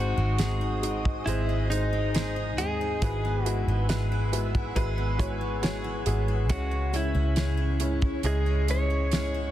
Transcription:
Already playing: G#1 G#2 G#3 C4 D#4 F#4 G#4 C5 D#5 G#5 D#6
0.17 G#1 C4
0.39 G#3 C4 D#4 G#4, snare, closed hi-hat
0.61 D#4
0.82 G#3 C4 D#4 F#4, closed hi-hat
1.05 kick
1.26 G#1 G#2 G#3 C4 E4 G#4 C5 D#5, closed hi-hat
1.49 C4
1.70 G#3 C4 D#4 C5, closed hi-hat
1.93 C4
2.15 G#3 C4 D#4 G#4 C5, snare, closed hi-hat
2.36 D#4
2.58 D#2 G#3 C4 D#4 G#4 D#5, closed hi-hat
2.81 D#4
3.01 G#1 G#2 G#3 E4 F#4 G#4 B4 F#5 E6, kick, closed hi-hat
3.25 B3
3.44 G#3 E4 F#4 B4, closed hi-hat
3.67 G#1 B3
3.89 G#3 E4 F#4 G#4 B4, snare, closed hi-hat
4.12 E4
4.32 G#3 B3 E4 F#4 B4, closed hi-hat
4.55 E4, kick
4.76 G#1 G#2 G#3 E4 F#4 G#4 B4, kick, closed hi-hat
4.98 B3
5.18 G#3 E4 F#4 C#5, kick, closed hi-hat
5.41 B3
5.62 G#3 E4 F#4 G#4 C#5, snare, closed hi-hat
5.84 E4
6.06 G#1 G#3 B3 E4 F#4 G#4, closed hi-hat
6.28 E4
6.49 C#2 C#3 G#3 C#4 E4 F#4 G#4 C#5, kick, closed hi-hat
6.71 C#4
6.93 G#3 C#4 E4 C#5, closed hi-hat
7.15 C#2 C#4
7.36 G#3 C#4 E4 G#4 C#5, snare, closed hi-hat
7.57 E4
7.80 G#3 C#4 E4 C#5, closed hi-hat
8.01 E4, kick
8.23 C#2 C#3 G#3 C#4 E4 G#4 D#5 F#5, closed hi-hat
8.46 C#4
8.68 G#3 C#4 E4 C#5, closed hi-hat
8.90 C#4
9.12 G#3 C#4 E4 G#4 C#5, snare, closed hi-hat
9.34 E4

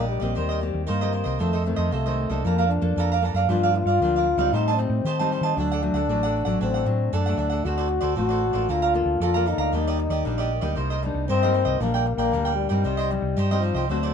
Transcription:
Already playing: A#1 A#2 G3 A#3 D4 D5
0.00 G4 D#5
0.08 G3
0.20 A#1 A#3 C4 G4 D5 D#5
0.35 D#2 D#3 D#4 A#4 C5 D#5
0.49 A#4 C5 D#5
0.60 A#3 C4 G4, muted cavaquinho stroke
0.74 D#2
0.86 G2 D#3 A#3 D#4 A#4 C5 D#5
1.01 A#3 C4 G4 A#4 C5 D#5
1.12 D#4 A#4 C5 D#5
1.24 C2 A#4 C5 D#5
1.39 F2 D#3 A3 F4 A4 C5 D#5
1.43 C4
1.53 A4 C5 D#5
1.64 D#3 A3 C4, muted cavaquinho stroke
1.76 F2 A4 C5 D#5
1.91 C2 C3 A3 F4 A4 C5 D#5
2.06 D#3 A3 C4 A4 C5 D#5
2.30 C2 A#3 D4 A4 C5 D#5
2.44 F2 F3 A#3 A4 D5 F5 A#5
2.58 A#3 D4 A4 D5 F5 A#5
2.69 D4, muted cavaquinho stroke
2.82 F2 A#3 D4 A4
2.96 F2 F3 A4 D5 F5 A#5
3.12 D5 F5 A#5
3.21 A#3 D4 A4 D5 F5 A#5
3.34 F#2 D5 F5 A#5
3.49 G2 F3 A#3 D4 F4 G4 A#4 D5 F5
3.63 A#4 D5 F5
3.74 F4, muted cavaquinho stroke
3.86 G2 A#4 D5 F5
4.00 D2 D3 F3 A#3 D4 G4 A#4 D5 F5
4.16 A#4 D5 F5
4.37 D2 G3 C4 D#4 A#4 D5 F5
4.52 A2 D#4 G4 C5 D#5 A5
4.68 C5 D#5 A5
4.76 G3 C4 D#4, muted cavaquinho stroke
4.89 A2
5.04 A2 D#3 G4 C5 D#5 A5
5.19 G3 C4 D#4 C5 D#5 A5
5.31 G4 C5 D#5 A5
5.41 D#3 D#5 A5
5.46 C5
5.56 D2 D3 F#3 A3 D4 A4 D5
5.60 F#5
5.72 A4 D5 F#5
5.82 F#3 A3 D4, muted cavaquinho stroke
5.93 D2 A4 D5 F#5
6.08 A1 A2 F#3 A3 D4 A4 D5 F#5
6.23 A4 D5 F#5
6.45 A1 F#3 A3 D4 A4 D5 F#5
6.61 A1 D3 C4 D4 A4 D5 F#5
6.74 A4 D5 F#5
6.86 A2 F#3 A3 D4, muted cavaquinho stroke
7.13 F#2 A2 D4 A4 D5 F#5
7.26 F#3 A3 D4 A4 D5 F#5
7.37 D2 D4 A4 D5 F#5
7.50 A4 D5 F#5
7.65 D2 D3 A3 C4 F#4 A4 C5 D5
7.78 A4 C5 D5
7.88 muted cavaquinho stroke
8.01 D2 A4 C5 D5
8.15 A1 A2 A3 C4 F#4 A4 C5 D5
8.29 A4 C5 D5
8.53 A1 A#3 F4 A4 C5 D5
8.69 D2 D3 F4 A4 D5 F5 A#5
8.82 D5 F5 A#5
8.94 A#3 F4 A4, muted cavaquinho stroke
9.06 D2
9.20 F2 D3 F4 A4 D5 F5 A#5
9.34 A#3 F4 A4 D5 F5 A#5
9.46 D#4 A4 D5 F5 A#5
9.58 D2 D5 F5 A#5
9.72 D#2 D#3 G3 A#3 D4 G4 D5 D#5
9.87 G4 D5 D#5
9.99 muted cavaquinho stroke
10.10 D#2 G4 D5 D#5
10.25 A#1 A#2 G3 A#3 D4 G4 D5 D#5
10.38 G4 D5 D#5
10.61 D2 G3 A#3 D#4 G4 D5 D#5
10.75 C2 C3 D#4 A#4 C5 D#5
10.90 A#4 C5 D#5
11.02 G3 A#3 D4 D#4, muted cavaquinho stroke
11.14 C2
11.28 G2 C4 D#4 A#4 C5 D#5
11.43 G3 A#3 D#4 A#4 C5 D#5
11.54 D#4 A#4 C5 D#5
11.65 C2 A#4 C5 D#5
11.80 A#1 A#2 G3 A#3 D4 A#4 D5 G5
11.84 D4
11.94 A#4 D5 G5
12.06 muted cavaquinho stroke
12.16 A#1 A#3 D5 G5
12.20 A#4
12.32 D2 A#2 G3 A#3 D4 A#4 D5 G5
12.45 A#4 D5 G5
12.55 G3
12.69 G2 G3 C4 D#4 A#4 D5 G5
12.84 C2 C3 D#4 G4 C5 D#5
12.97 G4 C5 D#5
13.11 G3 C4 D#4, muted cavaquinho stroke
13.22 C2
13.37 G2 D#4 G4 C5 D#5
13.51 G3 C4 D#4 G4 C5 D#5
13.61 F3 D#4 G4 C5 D#5
13.74 C2 G4 C5 D#5
13.88 D2 D3 F#3 A3 C4 F#4 A4 C5 D5
14.03 A4 C5 D5

